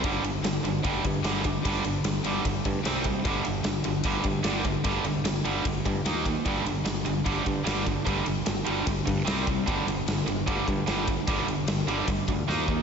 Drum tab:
RD |xxxxxxxx|xxxxxxxx|xxxxxxxx|xxxxxxxx|
SD |--o---o-|--o---o-|--o---o-|--o---o-|
BD |o---oo-o|o---oo-o|o---oo-o|o---oo-o|

RD |xxxxxxxx|xxxxxxxx|xxxxxxxx|xxxxxx--|
SD |--o---o-|--o---o-|--o---o-|--o---o-|
BD |o---oo-o|o---oo-o|o---oo-o|o---oo-o|